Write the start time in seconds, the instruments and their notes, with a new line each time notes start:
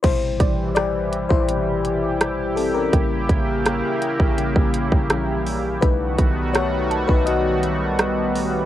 0.03 808-style bass A1, fm electric piano B2 C3 G3 E4 C5, analog synth pad E3 G3 E4 G4, kick, closed hi-hat, crash
0.40 808-style bass A1, synth pluck D5, kick, closed hi-hat
0.75 fm electric piano G4 D5, cross-stick, closed hi-hat
1.13 closed hi-hat
1.29 808-style bass A1, fm electric piano E4 C5, kick
1.48 fm electric piano B2 C3 G3, closed hi-hat
1.85 closed hi-hat
2.21 cross-stick, closed hi-hat
2.56 fm electric piano C4 A4, open hi-hat
2.74 fm electric piano C#4 A#4
2.93 808-style bass A1, fm electric piano C#3 G3 A#3, analog synth pad C#3 A#3, synth pluck G5, kick, closed hi-hat
3.29 808-style bass A1, kick, closed hi-hat
3.66 cross-stick, closed hi-hat
4.02 closed hi-hat
4.20 808-style bass A1, kick
4.38 fm electric piano C#3 G3 A#3, closed hi-hat
4.56 808-style bass A1, kick
4.74 closed hi-hat
4.92 808-style bass A#1, kick
5.10 fm electric piano E3 G3 C#4, analog synth pad G3, cross-stick, closed hi-hat
5.46 open hi-hat
5.81 808-style bass B1, analog synth pad D#3 A3 B3 F#4, fm electric piano G3 A3 D#4 B4, kick, closed hi-hat
6.18 808-style bass B1, kick, closed hi-hat
6.53 fm electric piano F#4 C#5, cross-stick, closed hi-hat
6.91 synth pluck A5, closed hi-hat
7.07 808-style bass B1, fm electric piano D#4 B4, kick
7.26 fm electric piano F#4 D#5, closed hi-hat
7.63 closed hi-hat
7.99 cross-stick, closed hi-hat
8.36 open hi-hat